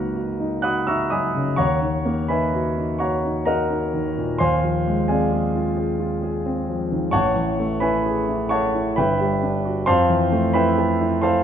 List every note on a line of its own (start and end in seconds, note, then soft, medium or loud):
0.00 1.55 C#2 medium
0.00 1.12 F#3 soft
0.00 1.61 A#3 soft
0.00 0.40 D#4 soft
0.00 0.15 F#4 medium
0.00 1.61 A#4 medium
0.00 0.12 B4 soft
0.00 1.11 D#5 medium
0.00 0.63 F#5 medium
0.00 0.88 A#5 medium
0.15 0.54 F#4 soft
0.40 0.78 D#4 soft
0.62 1.02 F#4 soft
0.62 0.85 F#5 medium
0.62 0.86 B5 medium
0.62 0.86 D#6 medium
0.62 0.87 F#6 medium
0.87 1.26 D#4 soft
0.87 1.10 E5 medium
0.87 1.10 A#5 medium
0.87 1.10 C#6 medium
0.87 1.11 E6 medium
1.10 1.50 F#3 soft
1.10 1.56 D#5 soft
1.10 1.56 G#5 medium
1.10 1.56 B5 medium
1.10 1.58 D#6 medium
1.35 1.59 C#3 soft
1.56 4.35 D#2 medium
1.56 2.26 C#5 medium
1.56 2.26 F#5 medium
1.56 2.26 A#5 medium
1.56 2.30 C#6 medium
1.82 2.21 D#3 soft
2.05 2.44 A#3 soft
2.28 2.68 D#4 soft
2.28 2.96 B4 medium
2.28 2.96 E5 medium
2.28 2.96 G#5 medium
2.28 2.99 B5 medium
2.54 2.91 F#4 soft
2.78 3.14 D#4 soft
2.99 3.37 F#4 soft
2.99 3.43 C#5 medium
2.99 3.43 F#5 soft
2.99 3.43 A#5 soft
2.99 3.46 C#6 medium
3.24 3.61 D#4 soft
3.45 3.84 F#4 soft
3.45 4.36 A#4 medium
3.45 4.36 D#5 medium
3.45 4.36 F#5 medium
3.45 4.39 A#5 medium
3.70 4.07 D#4 soft
3.93 4.31 D#3 soft
4.17 4.40 A#2 soft
4.39 7.10 D#2 medium
4.39 5.05 C5 medium
4.39 5.05 F5 medium
4.39 5.05 G#5 medium
4.39 5.08 C6 medium
4.63 4.99 F3 soft
4.87 5.23 G#3 soft
5.08 5.45 C4 soft
5.08 5.31 G#4 soft
5.08 5.73 D5 soft
5.08 5.73 F5 soft
5.08 5.76 G#5 medium
5.32 5.68 G#4 soft
5.55 5.91 F4 soft
5.77 6.13 G#4 soft
6.00 6.36 F4 soft
6.23 6.59 G#4 soft
6.46 6.82 C4 soft
6.69 7.05 F3 soft
6.91 7.14 D#3 soft
7.11 8.93 A1 medium
7.11 7.77 C#5 medium
7.11 7.77 F#5 medium
7.11 7.77 A5 medium
7.11 7.81 C#6 medium
7.36 7.72 E3 soft
7.59 7.96 A3 medium
7.80 8.19 E4 soft
7.80 8.47 B4 medium
7.80 8.47 E5 medium
7.80 8.47 G#5 medium
7.80 8.50 B5 medium
8.05 8.42 G#4 soft
8.29 8.65 E4 soft
8.49 8.88 A4 soft
8.49 8.94 C#5 medium
8.49 8.94 F#5 medium
8.49 8.94 A5 medium
8.49 8.97 C#6 medium
8.74 8.97 E4 soft
8.96 9.86 G1 medium
8.96 9.84 B4 medium
8.96 9.84 E5 medium
8.96 9.84 G5 medium
8.96 9.87 B5 medium
9.20 9.57 G3 soft
9.43 9.79 D4 soft
9.65 9.88 F#4 medium
9.86 11.44 F2 medium
9.86 10.51 C5 medium
9.86 10.51 F5 medium
9.86 10.51 A5 medium
9.86 10.54 C6 loud
10.09 10.46 E3 soft
10.32 10.69 A3 medium
10.54 10.92 E4 soft
10.54 11.20 B4 medium
10.54 11.20 E5 medium
10.54 11.20 G5 medium
10.54 11.23 B5 medium
10.78 11.15 A4 medium
11.01 11.38 E4 soft
11.22 11.44 A4 soft
11.22 11.44 C5 medium
11.22 11.44 F5 medium
11.22 11.44 A5 medium
11.22 11.44 C6 medium